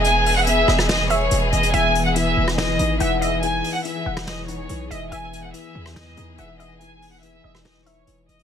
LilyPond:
<<
  \new Staff \with { instrumentName = "Synth pluck" } { \time 4/4 \key e \major \tempo 4 = 142 r4. dis''4 e''8 r4 | e''4 r2 fis''8 e''8 | r4. fis''2 e''8 | e''4 r2 fis''8 e''8 |
r4. dis''4 e''8 r4 | }
  \new Staff \with { instrumentName = "Violin section" } { \time 4/4 \key e \major gis''8. fis''16 e''4 dis''8 cis''4 dis''8 | gis''8. fis''16 e''4 dis''4 e''8 dis''8 | gis''8. fis''16 e''4 dis''8 cis''4 dis''8 | gis''8. fis''16 e''4 dis''4 e''8 dis''8 |
gis''8. fis''16 e''4 dis''8 cis''4 dis''8 | }
  \new Staff \with { instrumentName = "String section" } { \time 4/4 \key e \major << { <b gis'>1~ | <b gis'>1~ | <b gis'>1 | <b gis'>1~ |
<b gis'>1 | } \\ { e1 | e1~ | e1~ | e1~ |
e1 | } >> }
  \new Staff \with { instrumentName = "Tine electric piano" } { \clef bass \time 4/4 \key e \major r1 | e4 e4 e8 dis'8 e4 | e4 e4 e8 dis'8 e4 | e4 e4 e8 dis'8 e4 |
e4 e4 e8 dis'8 e4 | }
  \new Staff \with { instrumentName = "808-style bass" } { \clef bass \time 4/4 \key e \major e,,4. e,,4. e,,8 e,,8 | e,,4. e,,4 gis,,8 e,,4~ | e,,8 r4 e,,4. b,,8 e,,8 | e,,4 r8 e,4 e,8 e,,4~ |
e,,4. e,,4. e,,8 e,,8 | }
  \new DrumStaff \with { instrumentName = "Drums" } \drummode { \time 4/4 hh8 hho8 hh8 ss16 ss16 <hh sn>8 hh8 hh8 hh16 hh16 | hh8 hh8 hh8. ss16 <hh sn>8 hh8 hh8 hh8 | hh8 hho8 hh8. <ss sn>16 <hh sn>8 hh8 hh8 hh8 | hh8 hh8 hh8. ss16 <hh sn>8 hh8 hh8 hh8 |
hh8 hho8 hh8. ss16 <hh sn>8 hh8 hh8 hh16 hh16 | }
>>